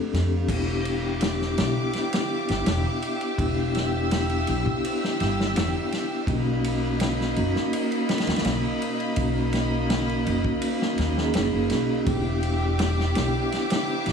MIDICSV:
0, 0, Header, 1, 5, 480
1, 0, Start_track
1, 0, Tempo, 722892
1, 329, Time_signature, 4, 2, 24, 8
1, 9379, End_track
2, 0, Start_track
2, 0, Title_t, "Violin section"
2, 0, Program_c, 0, 48
2, 326, Note_on_c, 0, 76, 65
2, 329, Note_on_c, 0, 67, 72
2, 331, Note_on_c, 0, 86, 83
2, 2231, Note_off_c, 0, 86, 0
2, 2256, Note_on_c, 0, 88, 86
2, 4141, Note_off_c, 0, 76, 0
2, 4142, Note_off_c, 0, 67, 0
2, 4153, Note_off_c, 0, 88, 0
2, 4165, Note_on_c, 0, 83, 84
2, 4166, Note_on_c, 0, 58, 76
2, 4166, Note_on_c, 0, 75, 74
2, 7980, Note_off_c, 0, 83, 0
2, 7981, Note_off_c, 0, 58, 0
2, 7981, Note_off_c, 0, 75, 0
2, 8021, Note_on_c, 0, 67, 75
2, 8022, Note_on_c, 0, 76, 69
2, 8023, Note_on_c, 0, 86, 86
2, 9379, Note_off_c, 0, 67, 0
2, 9379, Note_off_c, 0, 76, 0
2, 9379, Note_off_c, 0, 86, 0
2, 9379, End_track
3, 0, Start_track
3, 0, Title_t, "Vibraphone"
3, 0, Program_c, 1, 11
3, 0, Control_c, 1, 64, 127
3, 0, Note_on_c, 1, 57, 94
3, 0, Note_on_c, 1, 60, 82
3, 0, Note_on_c, 1, 62, 82
3, 0, Note_on_c, 1, 67, 80
3, 0, Note_on_c, 1, 69, 102
3, 84, Note_off_c, 1, 57, 0
3, 84, Note_on_c, 1, 57, 76
3, 85, Note_off_c, 1, 60, 0
3, 85, Note_on_c, 1, 60, 67
3, 89, Note_off_c, 1, 62, 0
3, 89, Note_on_c, 1, 62, 65
3, 90, Note_off_c, 1, 67, 0
3, 90, Note_on_c, 1, 67, 79
3, 299, Note_off_c, 1, 57, 0
3, 300, Note_off_c, 1, 60, 0
3, 302, Note_off_c, 1, 62, 0
3, 302, Note_off_c, 1, 67, 0
3, 314, Note_on_c, 1, 59, 81
3, 320, Note_on_c, 1, 62, 71
3, 326, Note_on_c, 1, 64, 75
3, 331, Note_on_c, 1, 67, 91
3, 338, Note_off_c, 1, 69, 0
3, 338, Control_c, 1, 64, 0
3, 464, Control_c, 1, 64, 127
3, 1014, Note_off_c, 1, 59, 0
3, 1017, Note_off_c, 1, 62, 0
3, 1020, Note_off_c, 1, 64, 0
3, 1022, Note_off_c, 1, 67, 0
3, 1035, Note_on_c, 1, 59, 77
3, 1040, Note_on_c, 1, 62, 66
3, 1045, Note_on_c, 1, 64, 71
3, 1050, Note_on_c, 1, 67, 86
3, 2215, Note_off_c, 1, 59, 0
3, 2217, Note_off_c, 1, 62, 0
3, 2220, Note_off_c, 1, 64, 0
3, 2222, Note_off_c, 1, 67, 0
3, 2241, Note_on_c, 1, 59, 83
3, 2246, Note_on_c, 1, 62, 78
3, 2250, Note_on_c, 1, 64, 78
3, 2257, Note_on_c, 1, 67, 92
3, 2937, Note_off_c, 1, 59, 0
3, 2940, Note_off_c, 1, 62, 0
3, 2942, Note_off_c, 1, 64, 0
3, 2946, Note_off_c, 1, 67, 0
3, 2966, Note_on_c, 1, 59, 73
3, 2969, Note_on_c, 1, 62, 67
3, 2973, Note_on_c, 1, 64, 74
3, 2977, Note_on_c, 1, 67, 87
3, 4140, Note_off_c, 1, 59, 0
3, 4141, Note_off_c, 1, 62, 0
3, 4143, Note_off_c, 1, 64, 0
3, 4145, Note_off_c, 1, 67, 0
3, 4166, Note_on_c, 1, 58, 88
3, 4172, Note_on_c, 1, 61, 76
3, 4176, Note_on_c, 1, 63, 77
3, 4177, Control_c, 1, 64, 0
3, 4182, Note_on_c, 1, 66, 92
3, 4288, Control_c, 1, 64, 127
3, 4860, Note_off_c, 1, 58, 0
3, 4863, Note_off_c, 1, 61, 0
3, 4865, Note_off_c, 1, 63, 0
3, 4868, Note_off_c, 1, 66, 0
3, 4882, Note_on_c, 1, 58, 80
3, 4886, Note_on_c, 1, 61, 67
3, 4893, Note_on_c, 1, 63, 74
3, 4898, Note_on_c, 1, 66, 84
3, 6058, Note_off_c, 1, 58, 0
3, 6060, Note_off_c, 1, 61, 0
3, 6063, Note_off_c, 1, 63, 0
3, 6066, Note_off_c, 1, 66, 0
3, 6082, Note_on_c, 1, 58, 84
3, 6086, Note_on_c, 1, 61, 76
3, 6091, Note_on_c, 1, 63, 77
3, 6101, Note_on_c, 1, 66, 86
3, 6778, Note_off_c, 1, 58, 0
3, 6780, Note_off_c, 1, 61, 0
3, 6782, Note_off_c, 1, 63, 0
3, 6787, Note_off_c, 1, 66, 0
3, 6807, Note_on_c, 1, 58, 77
3, 6814, Note_on_c, 1, 61, 66
3, 6816, Note_on_c, 1, 63, 74
3, 6824, Note_on_c, 1, 66, 87
3, 7388, Note_off_c, 1, 58, 0
3, 7391, Note_off_c, 1, 61, 0
3, 7392, Note_off_c, 1, 63, 0
3, 7396, Note_off_c, 1, 66, 0
3, 7415, Note_on_c, 1, 58, 90
3, 7417, Note_on_c, 1, 61, 86
3, 7423, Note_on_c, 1, 63, 84
3, 7424, Note_on_c, 1, 68, 100
3, 7544, Note_off_c, 1, 58, 0
3, 7545, Note_off_c, 1, 61, 0
3, 7548, Note_off_c, 1, 63, 0
3, 7548, Note_off_c, 1, 68, 0
3, 7768, Note_on_c, 1, 58, 73
3, 7772, Note_on_c, 1, 61, 65
3, 7775, Note_on_c, 1, 63, 67
3, 7781, Note_on_c, 1, 66, 81
3, 7981, Note_off_c, 1, 58, 0
3, 7983, Note_off_c, 1, 61, 0
3, 7985, Note_off_c, 1, 63, 0
3, 7987, Note_off_c, 1, 66, 0
3, 8006, Note_on_c, 1, 59, 78
3, 8010, Note_on_c, 1, 62, 75
3, 8018, Control_c, 1, 64, 0
3, 8018, Note_on_c, 1, 64, 77
3, 8023, Note_on_c, 1, 67, 87
3, 8121, Control_c, 1, 64, 127
3, 8700, Note_off_c, 1, 59, 0
3, 8702, Note_off_c, 1, 62, 0
3, 8706, Note_off_c, 1, 64, 0
3, 8708, Note_off_c, 1, 67, 0
3, 8727, Note_on_c, 1, 59, 75
3, 8735, Note_on_c, 1, 62, 68
3, 8739, Note_on_c, 1, 64, 69
3, 8743, Note_on_c, 1, 67, 82
3, 9379, Note_off_c, 1, 59, 0
3, 9379, Note_off_c, 1, 62, 0
3, 9379, Note_off_c, 1, 64, 0
3, 9379, Note_off_c, 1, 67, 0
3, 9379, End_track
4, 0, Start_track
4, 0, Title_t, "Upright bass"
4, 0, Program_c, 2, 32
4, 88, Note_on_c, 2, 41, 93
4, 301, Note_off_c, 2, 41, 0
4, 322, Note_on_c, 2, 28, 91
4, 1023, Note_off_c, 2, 28, 0
4, 1051, Note_on_c, 2, 35, 92
4, 1160, Note_off_c, 2, 35, 0
4, 1657, Note_on_c, 2, 31, 93
4, 1756, Note_off_c, 2, 31, 0
4, 1773, Note_on_c, 2, 28, 93
4, 1881, Note_off_c, 2, 28, 0
4, 2248, Note_on_c, 2, 28, 95
4, 2946, Note_off_c, 2, 28, 0
4, 2980, Note_on_c, 2, 35, 92
4, 3084, Note_off_c, 2, 35, 0
4, 3458, Note_on_c, 2, 31, 102
4, 3694, Note_off_c, 2, 31, 0
4, 3694, Note_on_c, 2, 28, 93
4, 3801, Note_off_c, 2, 28, 0
4, 4168, Note_on_c, 2, 35, 99
4, 4866, Note_off_c, 2, 35, 0
4, 4895, Note_on_c, 2, 30, 97
4, 5002, Note_off_c, 2, 30, 0
4, 5494, Note_on_c, 2, 39, 87
4, 5595, Note_off_c, 2, 39, 0
4, 5609, Note_on_c, 2, 35, 93
4, 5719, Note_off_c, 2, 35, 0
4, 6091, Note_on_c, 2, 35, 89
4, 6788, Note_off_c, 2, 35, 0
4, 6818, Note_on_c, 2, 30, 91
4, 6924, Note_off_c, 2, 30, 0
4, 7295, Note_on_c, 2, 39, 101
4, 7535, Note_on_c, 2, 30, 83
4, 7545, Note_off_c, 2, 39, 0
4, 7642, Note_off_c, 2, 30, 0
4, 7660, Note_on_c, 2, 30, 80
4, 7758, Note_off_c, 2, 30, 0
4, 7772, Note_on_c, 2, 35, 75
4, 7880, Note_off_c, 2, 35, 0
4, 8014, Note_on_c, 2, 28, 89
4, 8709, Note_off_c, 2, 28, 0
4, 8737, Note_on_c, 2, 35, 91
4, 8843, Note_off_c, 2, 35, 0
4, 9340, Note_on_c, 2, 31, 91
4, 9379, Note_off_c, 2, 31, 0
4, 9379, End_track
5, 0, Start_track
5, 0, Title_t, "Drums"
5, 95, Note_on_c, 9, 51, 62
5, 96, Note_on_c, 9, 38, 44
5, 161, Note_off_c, 9, 51, 0
5, 162, Note_off_c, 9, 38, 0
5, 321, Note_on_c, 9, 49, 83
5, 322, Note_on_c, 9, 36, 102
5, 327, Note_on_c, 9, 51, 90
5, 388, Note_off_c, 9, 36, 0
5, 388, Note_off_c, 9, 49, 0
5, 394, Note_off_c, 9, 51, 0
5, 566, Note_on_c, 9, 51, 66
5, 632, Note_off_c, 9, 51, 0
5, 801, Note_on_c, 9, 51, 86
5, 813, Note_on_c, 9, 38, 117
5, 867, Note_off_c, 9, 51, 0
5, 880, Note_off_c, 9, 38, 0
5, 939, Note_on_c, 9, 38, 34
5, 1006, Note_off_c, 9, 38, 0
5, 1046, Note_on_c, 9, 51, 74
5, 1052, Note_on_c, 9, 38, 102
5, 1113, Note_off_c, 9, 51, 0
5, 1118, Note_off_c, 9, 38, 0
5, 1283, Note_on_c, 9, 51, 65
5, 1293, Note_on_c, 9, 38, 35
5, 1350, Note_off_c, 9, 51, 0
5, 1360, Note_off_c, 9, 38, 0
5, 1411, Note_on_c, 9, 51, 81
5, 1420, Note_on_c, 9, 38, 107
5, 1478, Note_off_c, 9, 51, 0
5, 1487, Note_off_c, 9, 38, 0
5, 1650, Note_on_c, 9, 51, 57
5, 1660, Note_on_c, 9, 38, 41
5, 1716, Note_off_c, 9, 51, 0
5, 1726, Note_off_c, 9, 38, 0
5, 1767, Note_on_c, 9, 51, 85
5, 1772, Note_on_c, 9, 38, 109
5, 1833, Note_off_c, 9, 51, 0
5, 1838, Note_off_c, 9, 38, 0
5, 2008, Note_on_c, 9, 51, 66
5, 2074, Note_off_c, 9, 51, 0
5, 2131, Note_on_c, 9, 51, 44
5, 2197, Note_off_c, 9, 51, 0
5, 2247, Note_on_c, 9, 36, 96
5, 2248, Note_on_c, 9, 51, 89
5, 2313, Note_off_c, 9, 36, 0
5, 2314, Note_off_c, 9, 51, 0
5, 2487, Note_on_c, 9, 51, 66
5, 2500, Note_on_c, 9, 38, 51
5, 2553, Note_off_c, 9, 51, 0
5, 2566, Note_off_c, 9, 38, 0
5, 2730, Note_on_c, 9, 51, 89
5, 2736, Note_on_c, 9, 38, 122
5, 2796, Note_off_c, 9, 51, 0
5, 2802, Note_off_c, 9, 38, 0
5, 2852, Note_on_c, 9, 51, 43
5, 2918, Note_off_c, 9, 51, 0
5, 2969, Note_on_c, 9, 51, 64
5, 3035, Note_off_c, 9, 51, 0
5, 3096, Note_on_c, 9, 36, 91
5, 3162, Note_off_c, 9, 36, 0
5, 3217, Note_on_c, 9, 51, 86
5, 3283, Note_off_c, 9, 51, 0
5, 3348, Note_on_c, 9, 38, 49
5, 3415, Note_off_c, 9, 38, 0
5, 3453, Note_on_c, 9, 51, 66
5, 3464, Note_on_c, 9, 38, 38
5, 3519, Note_off_c, 9, 51, 0
5, 3531, Note_off_c, 9, 38, 0
5, 3589, Note_on_c, 9, 38, 56
5, 3655, Note_off_c, 9, 38, 0
5, 3691, Note_on_c, 9, 51, 94
5, 3701, Note_on_c, 9, 38, 123
5, 3757, Note_off_c, 9, 51, 0
5, 3768, Note_off_c, 9, 38, 0
5, 3933, Note_on_c, 9, 51, 65
5, 3939, Note_on_c, 9, 38, 48
5, 3999, Note_off_c, 9, 51, 0
5, 4005, Note_off_c, 9, 38, 0
5, 4165, Note_on_c, 9, 36, 107
5, 4169, Note_on_c, 9, 51, 73
5, 4231, Note_off_c, 9, 36, 0
5, 4235, Note_off_c, 9, 51, 0
5, 4411, Note_on_c, 9, 51, 79
5, 4478, Note_off_c, 9, 51, 0
5, 4646, Note_on_c, 9, 51, 95
5, 4656, Note_on_c, 9, 38, 127
5, 4712, Note_off_c, 9, 51, 0
5, 4722, Note_off_c, 9, 38, 0
5, 4785, Note_on_c, 9, 38, 36
5, 4852, Note_off_c, 9, 38, 0
5, 4889, Note_on_c, 9, 51, 65
5, 4955, Note_off_c, 9, 51, 0
5, 5019, Note_on_c, 9, 38, 34
5, 5086, Note_off_c, 9, 38, 0
5, 5132, Note_on_c, 9, 51, 94
5, 5198, Note_off_c, 9, 51, 0
5, 5257, Note_on_c, 9, 51, 44
5, 5323, Note_off_c, 9, 51, 0
5, 5371, Note_on_c, 9, 51, 70
5, 5375, Note_on_c, 9, 38, 91
5, 5431, Note_off_c, 9, 51, 0
5, 5431, Note_on_c, 9, 51, 66
5, 5441, Note_off_c, 9, 38, 0
5, 5445, Note_on_c, 9, 38, 86
5, 5492, Note_off_c, 9, 51, 0
5, 5492, Note_on_c, 9, 51, 67
5, 5501, Note_off_c, 9, 38, 0
5, 5501, Note_on_c, 9, 38, 78
5, 5552, Note_off_c, 9, 51, 0
5, 5552, Note_on_c, 9, 51, 66
5, 5560, Note_off_c, 9, 38, 0
5, 5560, Note_on_c, 9, 38, 83
5, 5608, Note_off_c, 9, 51, 0
5, 5608, Note_on_c, 9, 51, 89
5, 5617, Note_off_c, 9, 38, 0
5, 5617, Note_on_c, 9, 38, 115
5, 5674, Note_off_c, 9, 51, 0
5, 5683, Note_off_c, 9, 38, 0
5, 5854, Note_on_c, 9, 51, 73
5, 5921, Note_off_c, 9, 51, 0
5, 5975, Note_on_c, 9, 51, 46
5, 6042, Note_off_c, 9, 51, 0
5, 6082, Note_on_c, 9, 51, 81
5, 6088, Note_on_c, 9, 36, 99
5, 6149, Note_off_c, 9, 51, 0
5, 6155, Note_off_c, 9, 36, 0
5, 6325, Note_on_c, 9, 51, 62
5, 6333, Note_on_c, 9, 38, 57
5, 6391, Note_off_c, 9, 51, 0
5, 6399, Note_off_c, 9, 38, 0
5, 6573, Note_on_c, 9, 51, 93
5, 6575, Note_on_c, 9, 38, 124
5, 6639, Note_off_c, 9, 51, 0
5, 6641, Note_off_c, 9, 38, 0
5, 6702, Note_on_c, 9, 51, 39
5, 6769, Note_off_c, 9, 51, 0
5, 6816, Note_on_c, 9, 51, 61
5, 6882, Note_off_c, 9, 51, 0
5, 6935, Note_on_c, 9, 36, 93
5, 7002, Note_off_c, 9, 36, 0
5, 7048, Note_on_c, 9, 51, 87
5, 7115, Note_off_c, 9, 51, 0
5, 7183, Note_on_c, 9, 38, 49
5, 7250, Note_off_c, 9, 38, 0
5, 7288, Note_on_c, 9, 51, 65
5, 7300, Note_on_c, 9, 38, 47
5, 7354, Note_off_c, 9, 51, 0
5, 7366, Note_off_c, 9, 38, 0
5, 7421, Note_on_c, 9, 38, 53
5, 7488, Note_off_c, 9, 38, 0
5, 7526, Note_on_c, 9, 51, 84
5, 7538, Note_on_c, 9, 38, 127
5, 7593, Note_off_c, 9, 51, 0
5, 7605, Note_off_c, 9, 38, 0
5, 7766, Note_on_c, 9, 51, 69
5, 7776, Note_on_c, 9, 38, 47
5, 7833, Note_off_c, 9, 51, 0
5, 7842, Note_off_c, 9, 38, 0
5, 8011, Note_on_c, 9, 51, 82
5, 8013, Note_on_c, 9, 36, 117
5, 8077, Note_off_c, 9, 51, 0
5, 8079, Note_off_c, 9, 36, 0
5, 8251, Note_on_c, 9, 51, 63
5, 8318, Note_off_c, 9, 51, 0
5, 8491, Note_on_c, 9, 51, 90
5, 8498, Note_on_c, 9, 38, 110
5, 8557, Note_off_c, 9, 51, 0
5, 8564, Note_off_c, 9, 38, 0
5, 8632, Note_on_c, 9, 38, 39
5, 8698, Note_off_c, 9, 38, 0
5, 8732, Note_on_c, 9, 51, 85
5, 8741, Note_on_c, 9, 38, 100
5, 8799, Note_off_c, 9, 51, 0
5, 8808, Note_off_c, 9, 38, 0
5, 8979, Note_on_c, 9, 51, 60
5, 8987, Note_on_c, 9, 38, 39
5, 9046, Note_off_c, 9, 51, 0
5, 9054, Note_off_c, 9, 38, 0
5, 9098, Note_on_c, 9, 51, 88
5, 9109, Note_on_c, 9, 38, 115
5, 9164, Note_off_c, 9, 51, 0
5, 9175, Note_off_c, 9, 38, 0
5, 9335, Note_on_c, 9, 51, 58
5, 9348, Note_on_c, 9, 38, 43
5, 9379, Note_off_c, 9, 38, 0
5, 9379, Note_off_c, 9, 51, 0
5, 9379, End_track
0, 0, End_of_file